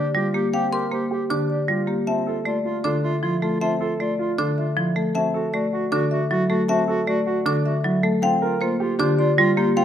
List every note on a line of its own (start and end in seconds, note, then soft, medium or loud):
0.00 0.21 D5 medium
0.15 0.40 G3 medium
0.15 0.40 F4 medium
0.15 0.28 G4 medium
0.34 0.59 A#3 medium
0.34 0.48 G4 medium
0.34 0.59 G4 medium
0.53 0.78 C4 medium
0.53 0.67 G4 medium
0.53 0.79 F5 medium
0.53 0.78 G5 medium
0.72 0.86 G4 medium
0.72 0.98 A#4 medium
0.72 0.98 C6 medium
0.92 1.17 A#3 medium
0.92 1.06 G4 medium
0.92 1.17 C5 medium
1.11 1.36 G4 medium
1.11 1.25 G4 medium
1.30 1.55 D3 medium
1.30 1.55 D4 medium
1.30 1.44 G4 soft
1.30 1.56 G4 medium
1.30 1.55 D6 medium
1.50 1.63 G4 soft
1.50 1.75 D5 medium
1.68 1.94 G3 medium
1.68 1.94 F4 medium
1.68 1.82 G4 soft
1.88 2.13 A#3 medium
1.88 2.13 G4 medium
2.07 2.32 C4 medium
2.07 2.21 F4 soft
2.07 2.32 E5 medium
2.07 2.32 A5 medium
2.26 2.40 F4 soft
2.26 2.52 A4 medium
2.45 2.71 A3 medium
2.45 2.59 F4 medium
2.45 2.71 D5 medium
2.64 2.78 F4 medium
2.64 2.90 F4 medium
2.84 3.09 D3 medium
2.84 3.09 D4 medium
2.84 2.97 F4 medium
2.84 3.10 A4 medium
2.84 3.09 D6 medium
3.03 3.17 F4 medium
3.03 3.29 E5 medium
3.22 3.48 F3 medium
3.22 3.48 E4 medium
3.22 3.36 F4 medium
3.42 3.67 A3 medium
3.42 3.56 F4 medium
3.42 3.67 A4 medium
3.61 3.86 C4 medium
3.61 3.74 F4 medium
3.61 3.86 E5 medium
3.61 3.86 A5 medium
3.80 3.94 F4 medium
3.80 4.05 A4 medium
4.00 4.25 A3 medium
4.00 4.13 F4 medium
4.00 4.25 D5 medium
4.19 4.44 F4 medium
4.19 4.33 F4 medium
4.38 4.63 D3 medium
4.38 4.63 D4 medium
4.38 4.52 F4 soft
4.38 4.63 A4 medium
4.38 4.63 D6 medium
4.58 4.72 F4 soft
4.58 4.83 E5 medium
4.77 5.02 F3 medium
4.77 5.02 E4 medium
4.77 4.91 F4 soft
4.96 5.21 A3 medium
4.96 5.21 A4 medium
5.15 5.40 C4 medium
5.15 5.29 F#4 soft
5.15 5.40 E5 medium
5.15 5.40 A5 medium
5.34 5.48 F#4 soft
5.34 5.59 A4 medium
5.53 5.78 A3 medium
5.53 5.67 F#4 medium
5.53 5.78 D5 medium
5.73 5.86 F#4 medium
5.73 5.98 F#4 medium
5.92 6.17 D3 medium
5.92 6.17 D4 medium
5.92 6.06 F#4 medium
5.92 6.17 A4 medium
5.92 6.17 D6 medium
6.11 6.25 F#4 medium
6.11 6.36 E5 medium
6.30 6.56 F#3 medium
6.30 6.55 E4 medium
6.30 6.44 F#4 medium
6.50 6.75 A3 medium
6.50 6.63 F#4 medium
6.50 6.75 A4 medium
6.69 6.94 C4 medium
6.69 6.83 F#4 medium
6.69 6.94 E5 medium
6.69 6.94 A5 medium
6.88 7.02 F#4 medium
6.88 7.13 A4 medium
7.07 7.32 A3 medium
7.07 7.21 F#4 medium
7.07 7.32 D5 medium
7.26 7.51 F#4 medium
7.26 7.40 F#4 medium
7.46 7.71 D3 medium
7.46 7.71 D4 medium
7.46 7.59 F#4 medium
7.46 7.71 A4 medium
7.46 7.71 D6 medium
7.65 7.79 F#4 medium
7.65 7.90 E5 medium
7.84 8.09 F#3 medium
7.84 8.09 E4 medium
7.84 7.98 F#4 soft
8.03 8.29 A3 medium
8.03 8.28 A4 medium
8.22 8.48 C4 medium
8.22 8.37 F4 soft
8.22 8.48 F5 medium
8.22 8.48 G5 loud
8.42 8.56 F4 medium
8.42 8.67 A#4 medium
8.61 8.86 A#3 medium
8.61 8.75 F4 medium
8.61 8.86 C5 medium
8.80 8.94 F4 medium
8.80 9.05 G4 medium
8.99 9.25 D3 medium
8.99 9.24 D4 medium
8.99 9.13 F4 medium
8.99 9.24 G4 medium
8.99 9.25 D6 medium
9.19 9.32 F4 medium
9.19 9.44 D5 medium
9.38 9.63 G3 loud
9.38 9.51 F4 medium
9.38 9.63 F4 medium
9.57 9.82 A#3 medium
9.57 9.70 F4 medium
9.57 9.82 G4 medium
9.76 9.85 C4 medium
9.76 9.85 F4 medium
9.76 9.85 F5 medium
9.76 9.85 G5 medium